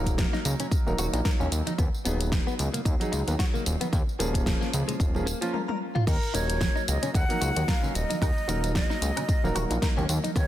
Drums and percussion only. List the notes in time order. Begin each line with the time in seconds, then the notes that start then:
0.06 kick, closed hi-hat, tambourine
0.18 kick, snare, closed hi-hat, tambourine, high conga
0.34 snare, tambourine
0.45 open hi-hat, tambourine
0.60 closed hi-hat, tambourine, low conga
0.72 kick, open hi-hat, tambourine
0.87 tambourine, high conga
0.98 open hi-hat, tambourine
1.14 closed hi-hat, tambourine
1.25 kick, snare, closed hi-hat, tambourine
1.40 tambourine, low conga
1.52 open hi-hat, tambourine
1.67 closed hi-hat, tambourine, high conga
1.78 kick, closed hi-hat, tambourine, low conga
1.94 tambourine
2.05 open hi-hat, tambourine
2.21 closed hi-hat, tambourine
2.32 kick, snare, closed hi-hat, tambourine, high conga
2.48 tambourine
2.59 open hi-hat, tambourine
2.74 closed hi-hat, tambourine, low conga
2.85 kick, closed hi-hat, tambourine
3.00 open hi-hat, tambourine, high conga
3.13 open hi-hat, tambourine
3.28 closed hi-hat, tambourine
3.39 kick, snare, closed hi-hat, tambourine
3.55 tambourine, low conga
3.66 open hi-hat, tambourine
3.81 closed hi-hat, tambourine, high conga
3.93 kick, closed hi-hat, tambourine, low conga
4.09 tambourine
4.20 open hi-hat, tambourine
4.34 kick, closed hi-hat, tambourine
4.46 kick, snare, closed hi-hat, tambourine, high conga
4.62 snare, tambourine
4.74 open hi-hat, tambourine
4.89 closed hi-hat, tambourine, low conga
5.00 kick, open hi-hat, tambourine
5.15 tambourine, high conga
5.27 open hi-hat, tambourine
5.42 closed hi-hat, tambourine
5.54 high tom
5.69 high tom
5.96 mid tom
6.07 kick, closed hi-hat, tambourine, crash
6.23 tambourine
6.35 open hi-hat, tambourine
6.50 closed hi-hat, tambourine
6.60 kick, snare, closed hi-hat, tambourine, high conga
6.77 tambourine
6.88 open hi-hat, tambourine
7.03 closed hi-hat, tambourine, low conga
7.14 kick, closed hi-hat, tambourine
7.30 open hi-hat, tambourine, high conga
7.42 open hi-hat, tambourine
7.57 closed hi-hat, tambourine
7.68 kick, snare, closed hi-hat, tambourine
7.83 tambourine, low conga
7.95 open hi-hat, tambourine
8.11 closed hi-hat, tambourine, high conga
8.22 kick, closed hi-hat, tambourine, high woodblock
8.38 tambourine
8.49 open hi-hat, tambourine
8.64 closed hi-hat, tambourine
8.75 kick, snare, closed hi-hat, tambourine, high conga
8.91 snare, tambourine
9.02 open hi-hat, tambourine
9.17 closed hi-hat, tambourine, low conga, high woodblock
9.29 kick, open hi-hat, tambourine
9.45 tambourine, high conga
9.56 open hi-hat, tambourine, high woodblock
9.71 closed hi-hat, tambourine
9.82 kick, snare, closed hi-hat, tambourine
9.98 tambourine, low conga
10.09 open hi-hat, tambourine
10.24 closed hi-hat, tambourine, high conga
10.36 kick, closed hi-hat, tambourine